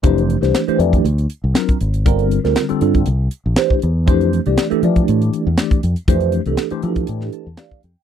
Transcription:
<<
  \new Staff \with { instrumentName = "Tine electric piano" } { \time 4/4 \key f \major \tempo 4 = 120 << { r1 | r1 | r1 | r2 r8 a''8 f''8 g''8 | } \\ { <e a d' g' c''>8. <e a d' g' c''>8 <e a d' g' c''>16 <e a d' g' d''>8 r4 <fis c' d' eis' ais'>8 eis'16 r16 | <d g c' f' bes'>8. <d g c' f' bes'>8 <d g c' f' a'>16 <d g c' f' a'>8 r4 <e a d' g' c''>8 <g' c''>16 r16 | <e a d' g' c''>8. <e a d' g' d''>8 <e a d' g' a'>16 <e a d' g' d''>4~ <e a d' g' d''>16 r16 <e a d' g' d''>8 d''16 r16 | <e a d' g' c''>8. <e a d' g' a'>8 <e a d' g' c''>16 <e a d' g' a'>4~ <e a d' g' a'>16 r16 <e a d' g' d''>8 <g' a'>16 r16 | } >> }
  \new Staff \with { instrumentName = "Fingered electric bass" } { \clef bass \time 4/4 \key f \major f,,8. c,16 r8 f,8 d,8 r16 c,16 r8 aes,,8 | g,,8. d,16 r8 g,8 c,8 r16 bes,,16 r8 e,8 | f,8. c,16 r8 f8 a,8 r16 e,16 r8 f,16 r16 | f,8. c,16 r8 f8 a,8 r16 e,16 r8 f,16 r16 | }
  \new DrumStaff \with { instrumentName = "Drums" } \drummode { \time 4/4 <hh bd>16 hh16 hh16 <hh sn>16 <hh sn>16 hh16 hh16 <hh bd>16 hh16 hh16 hh8 <hh sn>16 <hh bd>16 hh16 hh16 | <hh bd>16 hh16 hh16 <hh sn>16 <hh sn>16 hh16 hh16 <hh bd>16 hh8 hh8 <hh sn>16 bd16 hh8 | <hh bd>16 hh16 hh16 hh16 <hh sn>16 hh16 hh16 <hh bd>16 hh16 hh16 hh8 <hh sn>16 <hh bd>16 hh16 hh16 | <hh bd>16 hh16 hh16 hh16 <hh sn>16 hh16 hh16 <hh bd>16 hh16 sn16 hh8 <hh sn>16 bd16 hh8 | }
>>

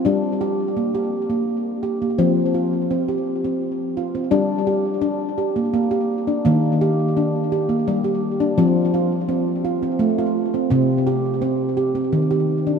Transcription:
<<
  \new Staff \with { instrumentName = "Handpan" } { \time 3/4 \key g \minor \tempo 4 = 84 d'8 g'8 bes16 g'8 bes8 r16 g'16 bes16 | c'8 f'8 c'16 g'8 c'8 r16 f'16 c'16 | d'8 g'8 d'8 g'16 bes8 g'8 d'16 | bes8 g'8 d'8 g'16 bes8 g'8 d'16 |
c'8 f'8 c'8 f'16 c'8 f'8 c'16 | c'8 g'8 c'8 g'16 c'8 g'8 d'16 | }
  \new Staff \with { instrumentName = "Handpan" } { \clef bass \time 3/4 \key g \minor g8 r2 r8 | f8 r2 r8 | g2 bes4 | ees2 g4 |
f2 a4 | c2 ees4 | }
>>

